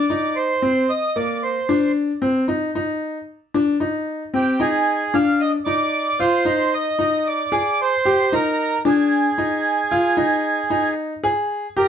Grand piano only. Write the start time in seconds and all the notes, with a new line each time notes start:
0.10 D#4
0.62 C4
1.16 A#3
1.69 D4
2.22 C4
2.48 D#4
2.75 D#4
3.54 D4
3.80 D#4
4.34 C4
4.60 D#4
5.14 D4
5.66 D#4
6.20 F4
6.45 D#4
6.99 D#4
7.52 G#4
8.05 G4
8.32 D#4
8.85 D4
9.38 D#4
9.91 F4
10.17 D#4
10.70 D#4
11.24 G#4
11.77 G4